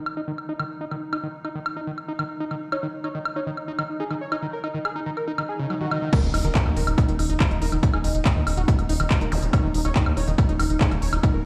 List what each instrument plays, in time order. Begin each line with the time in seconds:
Already playing: ambient pad D#4
0.06 high woodblock
0.17 acid bass D#4
0.28 acid bass D#3
0.38 high woodblock
0.49 acid bass D#4
0.59 acid bass D#3, high woodblock
0.81 acid bass D#4
0.91 acid bass D#3, high woodblock
1.13 acid bass D#4, high woodblock
1.23 acid bass D#3
1.45 acid bass D#4, high woodblock
1.55 acid bass D#3
1.66 high woodblock
1.77 acid bass D#4
1.87 acid bass D#3
1.98 high woodblock
2.08 acid bass D#4
2.19 acid bass D#3, high woodblock
2.40 acid bass D#4
2.51 acid bass D#3, high woodblock
2.72 acid bass D#4, analog synth lead C#5, high woodblock
2.83 acid bass D#3, analog synth lead D#4
2.94 analog synth lead D#4
3.04 acid bass D#4, analog synth lead C#5, high woodblock
3.15 acid bass D#3, analog synth lead D#4
3.25 analog synth lead D#4, high woodblock
3.36 acid bass D#4, analog synth lead C#5
3.47 acid bass D#3, analog synth lead D#4
3.57 analog synth lead D#4, high woodblock
3.68 acid bass D#4
3.79 acid bass D#3, analog synth lead D#4, high woodblock
3.89 analog synth lead D#4
4.00 acid bass D#4, analog synth lead G#4
4.11 acid bass D#3, analog synth lead D#4, high woodblock
4.21 analog synth lead C#5
4.32 acid bass D#4, analog synth lead D#4, high woodblock
4.43 acid bass D#3, analog synth lead D#4
4.53 analog synth lead A#4
4.64 acid bass D#4, analog synth lead D#4, high woodblock
4.74 acid bass D#3, analog synth lead D#4
4.85 analog synth lead G#4, high woodblock
4.96 acid bass D#4, analog synth lead D#4
5.06 acid bass D#3, analog synth lead D#4
5.17 analog synth lead A#4, high woodblock
5.28 analog synth lead D#4, acid bass D#4, swell
5.38 acid bass D#3, analog synth lead D#4, high woodblock
5.49 analog synth lead G#4
5.60 acid bass C#3, analog synth lead D#4
5.70 acid bass F#3, analog synth lead D#4, high woodblock
5.81 acid bass D#3, analog synth lead F#4
5.91 acid bass D#3, analog synth lead D#4, high woodblock
6.02 acid bass D#3, analog synth lead D#4
6.13 acid bass D#3, ambient pad D#4, analog synth lead A#4, kick, closed hi-hat, crash, impact, high woodblock
6.23 analog synth bass D#1, analog synth lead D#4
6.34 analog synth bass D#1, analog synth lead D#4, acid bass D#4, open hi-hat, high woodblock
6.45 analog synth bass D#1, acid bass D#3, analog synth lead A#4, closed hi-hat
6.55 analog synth lead D#4, kick, clap, closed hi-hat
6.66 analog synth bass D#2, acid bass D#4, analog synth lead D#4, high woodblock
6.77 analog synth bass D#1, acid bass D#3, analog synth lead A#4, open hi-hat
6.87 analog synth bass D#1, analog synth lead D#4, closed hi-hat, high woodblock
6.98 acid bass D#4, analog synth lead D#4, kick, closed hi-hat
7.08 analog synth bass D#1, acid bass D#3, closed hi-hat
7.19 analog synth bass D#1, analog synth lead D#4, open hi-hat, high woodblock
7.30 analog synth bass D#1, acid bass D#4, analog synth lead D#4, closed hi-hat
7.40 acid bass D#3, analog synth lead E4, kick, clap, closed hi-hat, high woodblock
7.51 analog synth bass D#1, analog synth lead D#4, closed hi-hat
7.62 analog synth bass D#1, acid bass D#4, analog synth lead A#4, open hi-hat
7.72 analog synth bass D#1, acid bass D#3, analog synth lead D#4, closed hi-hat, high woodblock
7.83 analog synth lead D#4, kick, closed hi-hat
7.94 analog synth bass D#1, acid bass D#4, analog synth lead G#4, high woodblock
8.04 analog synth bass D#1, acid bass D#3, analog synth lead D#4, open hi-hat
8.15 analog synth bass D#1, analog synth lead D#4, closed hi-hat
8.25 analog synth lead D#4, acid bass D#4, kick, clap, closed hi-hat, high woodblock
8.36 analog synth bass D#2, acid bass D#3, analog synth lead D#4
8.47 analog synth bass D#1, analog synth lead D#4, open hi-hat, high woodblock
8.57 analog synth bass D#1, acid bass D#4, analog synth lead F#4, closed hi-hat
8.68 acid bass D#3, analog synth lead D#4, kick, closed hi-hat
8.79 analog synth bass D#1, analog synth lead D#4, closed hi-hat, high woodblock
8.89 analog synth bass D#1, analog synth lead D#4, acid bass D#4, open hi-hat
9.00 analog synth bass D#1, acid bass D#3, analog synth lead D#4, closed hi-hat, high woodblock
9.11 analog synth lead D#4, kick, clap, closed hi-hat
9.21 analog synth bass D#1, acid bass D#4, analog synth lead A#4, closed hi-hat
9.32 analog synth bass D#1, acid bass D#3, analog synth lead D#4, open hi-hat, zap, high woodblock
9.42 analog synth bass D#1, analog synth lead D#4, closed hi-hat
9.53 acid bass D#4, analog synth lead C#5, kick, closed hi-hat, high woodblock
9.64 analog synth bass D#1, acid bass D#3, analog synth lead D#4
9.74 analog synth bass D#1, analog synth lead D#4, open hi-hat
9.85 analog synth bass D#1, acid bass D#4, analog synth lead C#5, closed hi-hat, high woodblock
9.96 acid bass D#3, analog synth lead D#4, kick, clap, closed hi-hat
10.06 analog synth bass D#2, analog synth lead D#4, high woodblock
10.17 analog synth bass D#1, acid bass D#4, analog synth lead C#5, open hi-hat
10.28 analog synth bass D#1, acid bass D#3, analog synth lead D#4, closed hi-hat
10.38 analog synth lead D#4, kick, closed hi-hat, high woodblock
10.49 analog synth bass D#1, acid bass D#4, closed hi-hat
10.59 analog synth bass D#1, acid bass D#3, analog synth lead D#4, open hi-hat, high woodblock
10.70 analog synth bass D#1, analog synth lead D#4, closed hi-hat
10.81 acid bass D#4, analog synth lead G#4, kick, clap, closed hi-hat
10.91 analog synth bass D#1, acid bass D#3, analog synth lead D#4, closed hi-hat, high woodblock
11.02 analog synth bass D#1, analog synth lead C#5, open hi-hat
11.13 analog synth bass D#1, analog synth lead D#4, acid bass D#4, closed hi-hat, high woodblock
11.23 acid bass D#3, analog synth lead D#4, kick, closed hi-hat
11.34 analog synth bass D#1, analog synth lead A#4